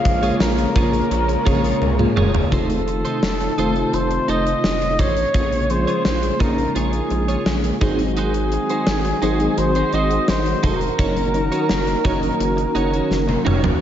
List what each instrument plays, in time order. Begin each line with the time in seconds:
Already playing: fm electric piano C#3 G#3 A#3 F4, analog synth pad C#3 G#3 A#3 F4, analog polysynth A#3 G#4 C#5, flugelhorn F5
0.04 analog synth bass A#1, overdriven electric guitar F3 A#3, muted clean electric guitar stroke, kick, closed hi-hat
0.22 fm electric piano C#3 G#3 A#3 F4, clean electric guitar F4 G#4 C#5, closed hi-hat
0.40 analog synth bass A#1, flugelhorn A#4, muted clean electric guitar stroke, snare, tambourine
0.58 muted clean electric guitar stroke, closed hi-hat
0.75 analog synth bass A#1, fm electric piano C#3 G#3 A#3 F4, clean electric guitar F4 G#4 C#5, kick, closed hi-hat
0.93 muted clean electric guitar stroke, closed hi-hat
1.09 analog synth bass A#1, overdriven electric guitar A#2 F3, muted clean electric guitar stroke, closed hi-hat
1.15 overdriven electric guitar A#3
1.28 muted clean electric guitar stroke, closed hi-hat
1.45 analog synth bass A#1, fm electric piano C#3 G#3 A#3 F4, clean electric guitar F4 G#4 C#5, kick, closed hi-hat
1.63 clean electric guitar F4 G#4 C#5, closed hi-hat
1.81 analog synth bass C#2, high tom
1.99 fm electric piano C#3 G#3 A#3 F4, muted clean electric guitar stroke, mid tom
2.16 analog synth bass E1, clean electric guitar F4 G#4 C#5, mid tom
2.34 muted clean electric guitar stroke, floor tom
2.52 analog synth bass F1, analog synth pad C3 A3 D#4 F4, fm electric piano D#3 A3 C4 F4, clean electric guitar D#4 A4 C5, flugelhorn A4, kick, closed hi-hat
2.70 muted clean electric guitar stroke, closed hi-hat
2.87 muted clean electric guitar stroke, closed hi-hat
3.05 clean electric guitar D#4 A4 C5, closed hi-hat
3.22 analog synth bass F1, muted clean electric guitar stroke, snare
3.40 muted clean electric guitar stroke, closed hi-hat
3.58 analog synth bass F1, fm electric piano D#3 A3 C4 F4, clean electric guitar D#4 A4 C5, closed hi-hat
3.75 fm electric piano D#3 A3 C4 F4, muted clean electric guitar stroke, closed hi-hat
3.93 analog synth bass F1, flugelhorn C5, muted clean electric guitar stroke, closed hi-hat
4.11 muted clean electric guitar stroke, closed hi-hat
4.28 analog synth bass F1, clean electric guitar D#4 A4 C5, flugelhorn D#5, closed hi-hat
4.46 muted clean electric guitar stroke, closed hi-hat
4.64 analog synth bass F1, snare
4.82 muted clean electric guitar stroke, closed hi-hat
4.99 analog synth bass A1, clean electric guitar D#4 A4 C5, flugelhorn C#5, kick, closed hi-hat
5.17 muted clean electric guitar stroke, closed hi-hat
5.34 analog synth bass A#1, analog synth pad C#3 G#3 A#3, fm electric piano F3 A#3 C#4 G#4, clean electric guitar F4 G#4 C#5, kick, closed hi-hat
5.52 muted clean electric guitar stroke, closed hi-hat
5.70 fm electric piano F3 A#3 C#4 G#4, flugelhorn C5, muted clean electric guitar stroke, closed hi-hat
5.87 clean electric guitar F4 G#4 C#5, closed hi-hat
6.05 analog synth bass A#1, muted clean electric guitar stroke, snare
6.22 muted clean electric guitar stroke, closed hi-hat
6.40 analog synth bass A#1, fm electric piano F3 A#3 C#4 D#4, clean electric guitar F4 G#4 C#5, flugelhorn A#4, kick, closed hi-hat
6.57 muted clean electric guitar stroke, closed hi-hat
6.75 analog synth bass A#1, clean electric guitar F4 G#4 C#5, flugelhorn G#4, closed hi-hat
6.93 muted clean electric guitar stroke, closed hi-hat
7.10 analog synth bass A#1, muted clean electric guitar stroke, closed hi-hat
7.28 clean electric guitar F4 G#4 C#5, closed hi-hat
7.45 analog synth bass A#1, snare
7.64 muted clean electric guitar stroke, closed hi-hat
7.81 analog synth bass G#1, analog synth pad D#3 C4 F#4, fm electric piano F#3 C4 D#4 G#4, clean electric guitar D#4 F#4 C5, kick, closed hi-hat
7.99 muted clean electric guitar stroke, closed hi-hat
8.17 clean electric guitar D#4 F#4 C5, flugelhorn G#4, closed hi-hat
8.34 muted clean electric guitar stroke, closed hi-hat
8.52 muted clean electric guitar stroke, closed hi-hat
8.70 clean electric guitar D#4 F#4 C5, closed hi-hat
8.87 analog synth bass G#1, snare
9.05 muted clean electric guitar stroke, closed hi-hat
9.22 analog synth bass G#1, fm electric piano F#3 C4 D#4 G#4, clean electric guitar D#4 F#4 C5, closed hi-hat
9.40 fm electric piano F#3 C4 D#4 G#4, muted clean electric guitar stroke, closed hi-hat
9.57 analog synth bass G#1, flugelhorn C5, muted clean electric guitar stroke, closed hi-hat
9.75 clean electric guitar D#4 F#4 C5, closed hi-hat
9.93 analog synth bass G#1, clean electric guitar D#4 F#4 C5, flugelhorn D#5, closed hi-hat
10.11 muted clean electric guitar stroke, closed hi-hat
10.28 analog synth bass G#1, flugelhorn C5, snare
10.46 muted clean electric guitar stroke, closed hi-hat
10.63 analog synth bass F1, clean electric guitar D#4 F#4 C5, flugelhorn A#4, kick, closed hi-hat
10.81 muted clean electric guitar stroke, closed hi-hat
10.98 analog synth bass F#1, analog synth pad D#3 A#3 C#4, fm electric piano F#3 C#4 D#4 A#4, clean electric guitar D#4 F#4 C#5, kick, closed hi-hat
11.16 muted clean electric guitar stroke, closed hi-hat
11.34 fm electric piano F#3 C#4 D#4 A#4, muted clean electric guitar stroke, closed hi-hat
11.52 clean electric guitar D#4 F#4 C#5, closed hi-hat
11.69 analog synth bass F#1, muted clean electric guitar stroke, snare
11.87 muted clean electric guitar stroke, closed hi-hat
12.04 analog synth bass F#1, fm electric piano F#3 C#4 D#4 A#4, clean electric guitar D#4 F#4 C#5, kick, closed hi-hat
12.22 muted clean electric guitar stroke, closed hi-hat
12.40 analog synth bass F#1, muted clean electric guitar stroke, closed hi-hat
12.57 muted clean electric guitar stroke, closed hi-hat
12.75 analog synth bass F#1, clean electric guitar D#4 F#4 C#5, closed hi-hat
12.92 clean electric guitar D#4 F#4 C#5, closed hi-hat
13.10 analog synth bass F#1, snare
13.28 muted clean electric guitar stroke, high tom
13.45 analog synth bass F1, clean electric guitar D#4 F#4 C#5, mid tom
13.63 muted clean electric guitar stroke, floor tom